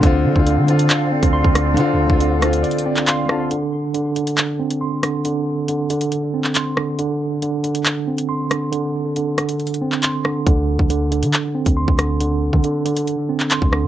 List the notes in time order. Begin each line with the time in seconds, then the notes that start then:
0.01 D2 D3 C4 A4 D5 F5, kick, closed hi-hat
0.06 F4
0.25 D3
0.33 D2 D3 C4, kick
0.39 F4
0.46 D3, closed hi-hat
0.57 D3
0.64 D3 C4
0.68 F4, closed hi-hat
0.79 closed hi-hat
0.90 clap, closed hi-hat
1.12 C4
1.23 D2, kick, closed hi-hat
1.33 C6
1.44 D2, kick
1.55 D3, cross-stick, closed hi-hat
1.74 D3 C4, closed hi-hat
1.80 F4
1.93 D2
2.07 D2 D3 C4, kick
2.13 F4
2.20 D3, closed hi-hat
2.39 D3 C4 C5, cross-stick, closed hi-hat
2.45 F4
2.53 closed hi-hat
2.63 D5, closed hi-hat
2.71 closed hi-hat
2.78 closed hi-hat
2.86 C4 D5
2.97 clap
3.07 F5 C6, clap, closed hi-hat
3.26 D3 C4 A5, cross-stick
3.32 F4
3.51 D3, closed hi-hat
3.94 D3, closed hi-hat
4.16 D3, closed hi-hat
4.27 closed hi-hat
4.38 clap, closed hi-hat
4.59 C4
4.70 closed hi-hat
4.81 C6
5.03 D3, cross-stick, closed hi-hat
5.25 D3, closed hi-hat
5.68 D3, closed hi-hat
5.90 D3, closed hi-hat
6.01 closed hi-hat
6.12 closed hi-hat
6.34 C4
6.44 clap
6.55 C6, clap, closed hi-hat
6.77 D3, cross-stick
6.99 D3, closed hi-hat
7.42 D3, closed hi-hat
7.63 D3, closed hi-hat
7.75 closed hi-hat
7.86 clap, closed hi-hat
8.07 C4
8.18 closed hi-hat
8.29 C6
8.51 D3, cross-stick, closed hi-hat
8.72 D3, closed hi-hat
9.16 D3, closed hi-hat
9.38 D3, cross-stick, closed hi-hat
9.49 closed hi-hat
9.60 closed hi-hat
9.67 closed hi-hat
9.74 closed hi-hat
9.82 C4
9.92 clap
10.03 C6, clap, closed hi-hat
10.25 D3, cross-stick
10.47 D2 D3, kick, closed hi-hat
10.79 D2, kick
10.90 D3, closed hi-hat
11.12 D3, closed hi-hat
11.23 D3, closed hi-hat
11.34 clap, closed hi-hat
11.55 C4
11.66 D2, kick, closed hi-hat
11.77 C6
11.88 D2, kick
11.99 D3, cross-stick, closed hi-hat
12.20 D3, closed hi-hat
12.53 D3, kick
12.64 D3, closed hi-hat
12.85 D3, closed hi-hat
12.97 closed hi-hat
13.07 closed hi-hat
13.29 C4
13.40 clap
13.51 C6, clap, closed hi-hat
13.62 D2, kick
13.72 D3, cross-stick
13.84 A2